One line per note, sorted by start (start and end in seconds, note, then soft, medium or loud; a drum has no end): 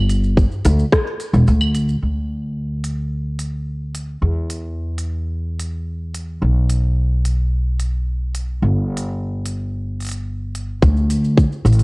0.00 0.43 G1 medium
0.10 open hi-hat medium
0.10 shaker medium
0.24 shaker soft
0.37 kick medium
0.37 shaker soft
0.52 shaker soft
0.65 0.83 D2 loud
0.65 open hi-hat loud
0.65 shaker medium
0.79 shaker soft
0.92 kick loud
0.92 cross-stick medium
0.92 shaker soft
1.07 shaker soft
1.20 open hi-hat medium
1.20 shaker medium
1.33 1.42 E1 medium
1.33 shaker soft
1.48 1.95 D2 medium
1.48 shaker soft
1.61 claves medium
1.61 shaker soft
1.75 open hi-hat medium
1.75 shaker medium
1.89 shaker soft
2.02 4.20 D2 medium
2.84 open hi-hat medium
3.39 open hi-hat medium
3.95 open hi-hat medium
4.22 6.39 E2 medium
4.50 open hi-hat medium
4.98 open hi-hat medium
5.59 open hi-hat medium
6.15 open hi-hat medium
6.42 8.60 B1 medium
6.70 open hi-hat medium
7.25 open hi-hat medium
7.80 open hi-hat medium
8.35 open hi-hat medium
8.62 10.80 G1 medium
8.97 open hi-hat medium
9.45 open hi-hat medium
10.00 open hi-hat soft
10.02 open hi-hat soft
10.05 open hi-hat soft
10.06 open hi-hat soft
10.09 open hi-hat medium
10.11 open hi-hat medium
10.55 open hi-hat medium
10.82 11.44 D2 medium
10.82 kick loud
10.82 shaker soft
10.97 shaker soft
11.10 open hi-hat loud
11.10 shaker medium
11.24 shaker soft
11.37 kick loud
11.37 shaker soft
11.52 shaker soft
11.65 11.83 A1 medium
11.65 open hi-hat soft
11.65 shaker medium
11.73 open hi-hat medium
11.79 open hi-hat medium
11.79 shaker soft